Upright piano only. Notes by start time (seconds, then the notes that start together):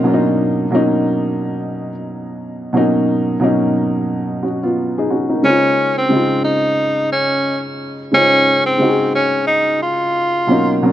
Already playing: B2 F#3 A#3 C#4 D#4
0.03 B2 F#3 A#3 C#4
0.07 D4
0.14 D#4
0.70 B2 F#3 A#3 C#4
0.75 D#4
2.73 B2 F#3 A#3 C#4
2.77 D#4
3.40 B2 F#3 A#3 C#4
3.44 D#4
4.43 C#4 F#4
4.63 B3 F4
4.98 D#4 G#4
5.10 C#4 F#4
5.29 A#3 D#4
5.42 C#3 G#3 D#4 C5
5.47 F4
6.09 C#3 G#3 C4 D#4
6.13 F4
8.12 C#3 G#3 D#4 C5
8.16 F4
8.78 C#3 G#3 D#4 C5
8.82 F#4
8.89 G#4
10.47 B2 F#3 A#3 C#4
10.51 D#4
10.82 B2 F#3 A#3 C#4
10.86 D4